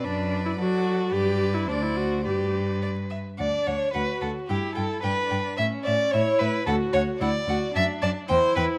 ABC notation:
X:1
M:2/4
L:1/16
Q:1/4=110
K:G
V:1 name="Violin"
d4 d4 | d4 d4 | d4 d2 e2 | [K:D] f2 f2 f2 f2 |
g2 g2 g2 g2 | e2 e2 e2 e2 | f2 f2 f2 f2 | [K:Dmix] a2 a2 g2 g2 |]
V:2 name="Violin"
B4 A4 | B4 c4 | B6 z2 | [K:D] d2 c2 B2 A2 |
G2 A2 B4 | e2 d2 c2 B2 | A2 c2 d4 | [K:Dmix] e2 d2 c2 B2 |]
V:3 name="Viola"
D3 E F4 | G3 E D E F2 | G4 z4 | [K:D] D4 F4 |
E4 D4 | C4 E4 | F4 E2 F2 | [K:Dmix] D4 E4 |]
V:4 name="Cello" clef=bass
F,,4 F,4 | G,,4 D,,4 | G,,6 z2 | [K:D] D,,2 D,,2 D,,2 D,,2 |
G,,2 G,,2 G,,2 G,,2 | A,,2 A,,2 A,,2 A,,2 | D,,2 D,,2 D,,2 D,,2 | [K:Dmix] F,,2 F,,2 E,,2 E,,2 |]